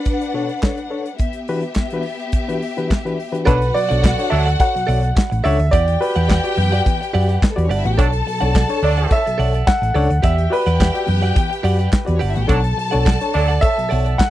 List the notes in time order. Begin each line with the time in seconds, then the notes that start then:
Already playing: D4 B4 F#5
0.05 kick, closed hi-hat
0.21 closed hi-hat
0.34 B2 D4 A4 C#5
0.49 closed hi-hat
0.62 A4 C#5, kick, snare, clap, closed hi-hat
0.77 closed hi-hat
0.90 A4 C#5
1.06 closed hi-hat
1.19 B3 G4 E5, kick, closed hi-hat
1.33 closed hi-hat
1.48 E3 D4 F#4 G4 B4, open hi-hat
1.62 G4 B4, closed hi-hat
1.74 kick, snare, clap, closed hi-hat
1.90 E3 D4 F#4 G4 B4, closed hi-hat
2.03 open hi-hat
2.20 closed hi-hat
2.32 kick, closed hi-hat
2.48 E3 D4 F#4 G4 B4, closed hi-hat
2.62 open hi-hat
2.77 E3 D4 F#4 G4 B4, closed hi-hat
2.90 kick, snare, clap, closed hi-hat
3.05 E3 D4 F#4 G4 B4, closed hi-hat
3.20 open hi-hat
3.32 E3 D4 F#4 G4 B4, closed hi-hat
3.45 B1 F#3 D4 F#4 A4 B4 C#5 D5 F#5, kick, closed hi-hat
3.61 muted clean electric guitar stroke, closed hi-hat
3.74 B2 F#3 D5, muted clean electric guitar stroke, open hi-hat
3.89 B1 D4 A4 C#5 D5 F#5, closed hi-hat
4.03 B2 F#3 A4 D5 F#5, kick, snare, clap, closed hi-hat
4.18 D4 A4 C#5, muted clean electric guitar stroke, closed hi-hat
4.30 D2 F#3 D4 A4 C#5 E5, open hi-hat
4.46 A4 D5 F#5, closed hi-hat
4.60 A4 C#5 F#5, kick, closed hi-hat
4.75 B2 F#3, muted clean electric guitar stroke, closed hi-hat
4.87 B1 A4 C#5 D5 F#5, open hi-hat
5.02 muted clean electric guitar stroke, closed hi-hat
5.15 muted clean electric guitar stroke, kick, snare, clap, closed hi-hat
5.30 A1, muted clean electric guitar stroke, closed hi-hat
5.44 C#2 D4 A4 C#5 D5 E5 F#5, open hi-hat
5.59 D2, muted clean electric guitar stroke, closed hi-hat
5.71 E2 E3 B3 G4 D5 F#5 G5, kick, closed hi-hat
5.88 G4 D5, muted clean electric guitar stroke, closed hi-hat
6.01 F#4 G4 B4 D5, muted clean electric guitar stroke, open hi-hat
6.16 E2 G4 D5 F#5, closed hi-hat
6.28 G4 D5 F#5, kick, snare, clap, closed hi-hat
6.44 F#4 G4 D5, muted clean electric guitar stroke, closed hi-hat
6.56 F#2 E3 B3, muted clean electric guitar stroke, open hi-hat
6.72 F#4 G4 D5 F#5, closed hi-hat
6.86 E3 B3, muted clean electric guitar stroke, kick, closed hi-hat
7.01 muted clean electric guitar stroke, closed hi-hat
7.13 F#2 F#4 G4 D5 F#5, open hi-hat
7.29 G4 D5 F#5, closed hi-hat
7.42 muted clean electric guitar stroke, kick, snare, clap, closed hi-hat
7.50 A3 A4
7.56 E2 B3 F#4 G4 B4 D5, muted clean electric guitar stroke, closed hi-hat
7.64 C#4 C#5
7.69 G1 D4 G4 D5 F#5, open hi-hat
7.78 E4 E5
7.84 A1 E3 B3 F#4 F#5, muted clean electric guitar stroke, closed hi-hat
7.92 G4 G5
7.98 B1 F#3 D4 A4 C#5 D5 F#5 A5, kick, closed hi-hat
8.13 muted clean electric guitar stroke, closed hi-hat
8.26 B2 F#3, muted clean electric guitar stroke, open hi-hat
8.40 B1 D4 A4 C#5 D5 F#5, closed hi-hat
8.54 B2 F#3 A4 D5 F#5, kick, snare, clap, closed hi-hat
8.69 D4 A4 C#5, closed hi-hat
8.82 D2 F#3 D4 A4 D5, muted clean electric guitar stroke, open hi-hat
8.98 A4 D5 F#5, closed hi-hat
9.11 A4 C#5 E5, muted clean electric guitar stroke, kick, closed hi-hat
9.26 B2 F#3, muted clean electric guitar stroke, closed hi-hat
9.38 B1 A4 C#5 D5 F#5, open hi-hat
9.54 A4 D5 F#5, closed hi-hat
9.67 F#5, kick, snare, clap, closed hi-hat
9.82 A1, muted clean electric guitar stroke, closed hi-hat
9.94 C#2 D4 A4 C#5 D5 F#5, open hi-hat
10.10 D2, muted clean electric guitar stroke, closed hi-hat
10.22 E2 E3 B3 G4 D5 E5 F#5 G5, kick, closed hi-hat
10.37 G4 D5, muted clean electric guitar stroke, closed hi-hat
10.50 F#4 G4 B4 D5, muted clean electric guitar stroke, open hi-hat
10.66 E2 G4 D5 F#5, closed hi-hat
10.80 G4 D5 F#5, kick, snare, clap, closed hi-hat
10.94 F#4 G4 D5, muted clean electric guitar stroke, closed hi-hat
11.07 F#2 E3 B3, muted clean electric guitar stroke, open hi-hat
11.21 F#4 G4 D5 F#5, closed hi-hat
11.34 E3 B3, muted clean electric guitar stroke, kick, closed hi-hat
11.50 muted clean electric guitar stroke, closed hi-hat
11.63 F#2 F#4 G4 D5 F#5, open hi-hat
11.79 G4 D5 F#5, closed hi-hat
11.92 kick, snare, clap, closed hi-hat
12.05 E2 B3 F#4 G4 B4 D5, muted clean electric guitar stroke, closed hi-hat
12.15 C#4 C#5
12.19 G1 D4 G4 D5 F#5, open hi-hat
12.29 E4 E5
12.35 A1 E3 B3 F#4 F#5, muted clean electric guitar stroke, closed hi-hat
12.42 G4 G5
12.48 B1 F#3 D4 A4 C#5 D5 F#5 A5, kick, closed hi-hat
12.63 muted clean electric guitar stroke, closed hi-hat
12.77 B2 F#3, muted clean electric guitar stroke, open hi-hat
12.91 B1 D4 A4 C#5 D5 F#5, closed hi-hat
13.05 B2 F#3 A4 D5 F#5, kick, snare, clap, closed hi-hat
13.20 D4 A4 C#5, muted clean electric guitar stroke, closed hi-hat
13.33 D2 F#3 D4 A4 C#5 D5, muted clean electric guitar stroke, open hi-hat
13.48 A4 D5 F#5, closed hi-hat
13.61 A4 C#5 E5, kick, closed hi-hat
13.76 B2 F#3, muted clean electric guitar stroke, closed hi-hat
13.89 B1 A4 C#5 D5 F#5, open hi-hat
14.05 A4 D5 F#5, closed hi-hat
14.18 F#5, muted clean electric guitar stroke, kick, snare, clap, closed hi-hat